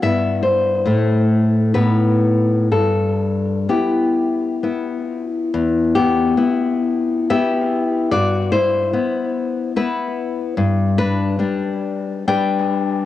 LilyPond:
\new Staff \with { instrumentName = "Nylon-string guitar" } { \time 3/4 \key e \minor \tempo 4 = 70 << { e''8 c''4. b'4 | a'4 g'4. r8 | r8 <b g'>4. <g' e''>4 | <fis' d''>8 <e' c''>4. <e' b'>4 |
r8 <d' b'>4. <b' g''>4 | } \\ { <g, b e'>4 <a, a e'>4 <a, b dis'>4 | g,4 <b e'>4 <b e'>4 | e,4 <b e'>4 <b e'>4 | g,4 <b e'>4 b4 |
g,4 <g d'>4 <g d'>4 | } >> }